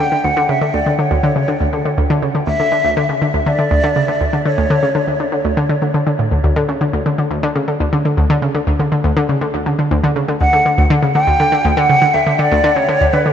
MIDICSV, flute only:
0, 0, Header, 1, 2, 480
1, 0, Start_track
1, 0, Tempo, 495868
1, 474, Time_signature, 4, 2, 24, 8
1, 12902, End_track
2, 0, Start_track
2, 0, Title_t, "Flute"
2, 0, Program_c, 0, 73
2, 0, Note_on_c, 0, 79, 102
2, 236, Note_on_c, 0, 78, 92
2, 251, Note_off_c, 0, 79, 0
2, 477, Note_on_c, 0, 76, 87
2, 492, Note_off_c, 0, 78, 0
2, 716, Note_on_c, 0, 74, 85
2, 731, Note_off_c, 0, 76, 0
2, 950, Note_off_c, 0, 74, 0
2, 956, Note_on_c, 0, 73, 77
2, 1877, Note_off_c, 0, 73, 0
2, 2393, Note_on_c, 0, 76, 110
2, 3075, Note_off_c, 0, 76, 0
2, 3352, Note_on_c, 0, 74, 108
2, 4275, Note_off_c, 0, 74, 0
2, 4315, Note_on_c, 0, 73, 94
2, 5236, Note_off_c, 0, 73, 0
2, 10074, Note_on_c, 0, 78, 104
2, 10521, Note_off_c, 0, 78, 0
2, 10794, Note_on_c, 0, 79, 115
2, 11326, Note_off_c, 0, 79, 0
2, 11326, Note_on_c, 0, 79, 76
2, 11391, Note_on_c, 0, 78, 102
2, 11406, Note_off_c, 0, 79, 0
2, 11750, Note_on_c, 0, 76, 94
2, 11764, Note_off_c, 0, 78, 0
2, 11990, Note_on_c, 0, 74, 98
2, 12005, Note_off_c, 0, 76, 0
2, 12349, Note_on_c, 0, 73, 96
2, 12363, Note_off_c, 0, 74, 0
2, 12712, Note_on_c, 0, 71, 83
2, 12726, Note_off_c, 0, 73, 0
2, 12902, Note_off_c, 0, 71, 0
2, 12902, End_track
0, 0, End_of_file